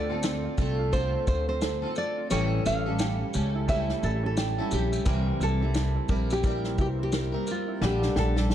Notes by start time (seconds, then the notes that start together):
Already playing: D2 D3 A3 D4 F4 C5 D5
0.09 C4 F4 A4
0.23 A4, snare, shaker
0.45 F4
0.58 C2 A3 C4 F4 A4, kick, shaker
0.79 F4
0.92 D3 A3 C4 D4 F4 A4 C5, kick, shaker
1.14 C4
1.26 D2 A3 D4 F4 C5, kick, shaker
1.48 C4 C5
1.61 A4, snare, shaker
1.82 C4 F4 A4
1.96 A4 D5, shaker
2.17 F4
2.30 A1 A2 E3 G3 A3 C#4 E4 G4 A4 C#5, shaker
2.52 C#4
2.66 A1 F5, shaker
2.86 G3 C#4 A4
2.99 G4, snare, shaker
3.34 C#2 G3 C#4 G4 A4, shaker
3.55 E4
3.67 G3 A3 C#4 E4 G4 A4 C#5 E5, kick, shaker
3.89 C#4, snare
4.03 A1 A3 E4 G4 A4, shaker
4.23 C#4 A4
4.37 G4, snare, shaker
4.58 G3 C#4 E4 A4
4.71 A#1 G4, shaker
4.92 E4, shaker
5.05 C2 C3 E3 G3 A#3 C4 E4 G4 A#4 C5, kick, shaker
5.26 C4
5.40 C2 E4 A4, shaker
5.61 G3 C4 E4
5.74 snare, shaker
5.96 E4
6.09 A#1 G3 C4 E4 A#4, kick, shaker
6.30 E4 G4, shaker
6.43 G3 A#3 C4 E4 G4 A#4 D5, kick, shaker
6.64 C4, snare
6.77 C2 A#3 E4 G4 B4, kick, shaker
6.86 C5
6.99 C4
7.03 G4
7.12 A#4, snare, shaker
7.32 G3 C4 E4 A#4
7.47 A#4, shaker
7.51 F4
7.68 E4
7.80 A#1 A#2 D3 G3 A#3 D4 G4 A4 D5, snare
7.85 G4
8.02 D4, snare
8.16 A#1 G4 A4, snare
8.36 G3 D4 G4 A4, snare
8.50 A4, snare